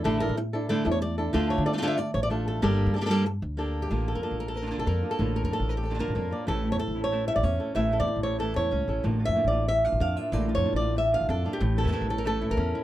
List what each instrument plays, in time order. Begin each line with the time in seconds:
0.04 upright bass A1, nylon-string guitar D3 A3 D4 E4 A4
0.20 nylon-string guitar D4 E4 A4 A#4
0.29 upright bass A2
0.37 muted nylon-string guitar stroke
0.53 nylon-string guitar D4 E4 A4
0.69 nylon-string guitar D3 A3 D4 E4 A4
0.85 upright bass E2, nylon-string guitar D4 E4 A4
0.91 nylon-string guitar C#5
1.02 nylon-string guitar D5, muted nylon-string guitar stroke
1.18 nylon-string guitar D4 E4 A4
1.33 upright bass D2, nylon-string guitar D3 A3 D4 F4 A4
1.50 nylon-string guitar C#5
1.58 upright bass D3
1.66 nylon-string guitar D4 F4 A4 D5
1.73 nylon-string guitar A3 D4 F4 A4
1.78 nylon-string guitar A3 D4 F4 A4
1.82 nylon-string guitar D3 A3 D4 F4 A4
1.88 nylon-string guitar E5
1.98 nylon-string guitar D5, muted nylon-string guitar stroke
2.14 upright bass A1, nylon-string guitar C#5
2.23 nylon-string guitar D5
2.30 nylon-string guitar A3 D4 F4 A4
2.48 nylon-string guitar A4
2.62 upright bass G1, nylon-string guitar G3 A#3 D4 G4 A4
2.87 upright bass G2
2.94 nylon-string guitar A#3 D4 G4 A4
2.98 nylon-string guitar A#3 D4 G4 A4
3.02 nylon-string guitar A#3 D4 A4
3.07 nylon-string guitar G3 G4 A4
3.11 nylon-string guitar A#3 D4 G4 A4
3.26 muted nylon-string guitar stroke
3.42 upright bass D2
3.57 nylon-string guitar A#3 D4 G4 A4
3.82 nylon-string guitar G4
3.90 upright bass A1, nylon-string guitar D3 A#3 D4 F4
4.08 nylon-string guitar A4
4.15 upright bass F2, nylon-string guitar A#4
4.22 nylon-string guitar A#3 D4 F4 A4
4.31 upright bass A1
4.40 nylon-string guitar A#4
4.48 nylon-string guitar A4
4.54 nylon-string guitar A#4, muted nylon-string guitar stroke
4.62 nylon-string guitar D3 A#3 D4 F4
4.66 nylon-string guitar D3 A#3 D4 F4
4.71 nylon-string guitar D3 A#3 D4 F4
4.78 upright bass A1, nylon-string guitar A4
4.86 upright bass F2, nylon-string guitar D3 A#3 D4 F4 A#4
5.03 nylon-string guitar A#3 D4 F4
5.11 nylon-string guitar A4
5.19 upright bass A1, nylon-string guitar A2 D3 A#3 D4 F4
5.36 nylon-string guitar A#4
5.44 upright bass F2, nylon-string guitar A#4
5.50 nylon-string guitar A#3 D4 F4 A4
5.60 upright bass A1
5.69 nylon-string guitar A#4
5.77 nylon-string guitar G4
5.83 nylon-string guitar A4, muted nylon-string guitar stroke
5.90 nylon-string guitar D3 A#3 D4 F4
5.94 nylon-string guitar D3 A#3 D4 F4
5.99 nylon-string guitar D3 A#3 D4 F4 A#4
6.08 upright bass A1
6.15 upright bass F2, nylon-string guitar D3 A#3 D4 F4
6.31 nylon-string guitar A#3 D4 F4 D5
6.47 upright bass A1, nylon-string guitar A2 E3 A3 C#4 E4 A4
6.63 nylon-string guitar A3 C#4 E4
6.72 upright bass E2, nylon-string guitar C#5
6.79 nylon-string guitar A4, muted nylon-string guitar stroke
6.88 upright bass A1
6.95 nylon-string guitar A3 C#4 E4
7.04 nylon-string guitar C#5
7.11 nylon-string guitar E3 A3 C#4 E4
7.27 nylon-string guitar A3 C#4 E4 E5
7.36 upright bass A1, nylon-string guitar D5
7.43 upright bass E2, nylon-string guitar C#4 C#5, muted nylon-string guitar stroke
7.59 nylon-string guitar A3 C#4 E4 A4
7.75 upright bass A1, nylon-string guitar A2 E3 A3 C#4 E4 E5
7.91 nylon-string guitar A3 C#4 E4 A4
8.00 upright bass E2, nylon-string guitar D5
8.07 muted nylon-string guitar stroke
8.16 upright bass A1
8.23 nylon-string guitar A3 C#4 E4 C#5
8.39 nylon-string guitar E3 A3 C#4 E4 A4
8.55 upright bass E2, nylon-string guitar A3 C#4 E4 C#5
8.71 upright bass C#2, nylon-string guitar C#4, muted nylon-string guitar stroke
8.88 upright bass A1, nylon-string guitar A3 C#4 E4 A4
9.03 upright bass A1, nylon-string guitar A2 D3 A#3 D4 F4
9.19 nylon-string guitar A#3 D4 F4
9.25 upright bass F2, nylon-string guitar E5
9.35 nylon-string guitar D3 A#3 D4 F4
9.44 upright bass A1, nylon-string guitar D5
9.52 nylon-string guitar A#3 D4 F4
9.68 nylon-string guitar E5, muted nylon-string guitar stroke
9.84 nylon-string guitar A#3 D4 F4 F5
9.92 upright bass A1
10.00 upright bass F2, nylon-string guitar D4 F5
10.16 nylon-string guitar A#3 D4 F4 E5
10.32 upright bass A1, nylon-string guitar A2 D3 A#3 D4 F4 D5
10.48 nylon-string guitar A#3 D4 F4
10.55 upright bass F2, nylon-string guitar C#5
10.64 nylon-string guitar D3 A#3 D4 F4
10.73 upright bass A1, nylon-string guitar D5
10.80 nylon-string guitar A#3 D4 F4
10.96 nylon-string guitar E5, muted nylon-string guitar stroke
11.12 nylon-string guitar A#3 D4 F4 F5
11.21 upright bass A1
11.29 upright bass F2, nylon-string guitar D4 A4
11.45 nylon-string guitar A#3 D4 F4
11.53 nylon-string guitar G4
11.61 upright bass A1, nylon-string guitar A2, muted nylon-string guitar stroke
11.76 nylon-string guitar E3 A3 C#4 E4 A4
11.83 upright bass E2, nylon-string guitar E3 A3 C#4 E4 A#4
11.88 nylon-string guitar E3 A3 C#4 E4
11.92 nylon-string guitar E3 A3 C#4 E4
12.01 upright bass A1
12.08 nylon-string guitar A3 C#4 E4 A4
12.18 nylon-string guitar A#4
12.24 nylon-string guitar E3 A3 C#4 E4 A4
12.41 nylon-string guitar A3 C#4 E4
12.50 upright bass A1, nylon-string guitar A#4
12.57 upright bass E2, nylon-string guitar C#4, muted nylon-string guitar stroke
12.75 nylon-string guitar E4